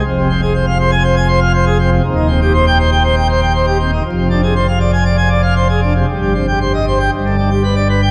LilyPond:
<<
  \new Staff \with { instrumentName = "Pipe organ" } { \time 4/4 \key c \minor \tempo 4 = 120 f,16 c16 c'16 aes'16 c''16 f''16 c''16 aes''16 c''16 aes''16 c''16 f''16 c''16 aes'16 c'16 c16 | ees,16 ees16 c'16 g'16 c''16 g''16 c''16 g''16 c''16 g''16 c''16 g''16 c''16 g'16 c'16 ees16 | f,16 c16 d'16 aes'16 c''16 f''16 d''16 aes''16 d''16 aes''16 d''16 f''16 c''16 aes'16 d'16 c16 | g,16 g16 c'16 g'16 c''16 ees''16 c''16 g''16 g,16 d16 d'16 g'16 b'16 d''16 b'16 g''16 | }
  \new Staff \with { instrumentName = "Pipe organ" } { \clef bass \time 4/4 \key c \minor f,,1 | ees,,1 | f,,1 | g,,2 g,,2 | }
>>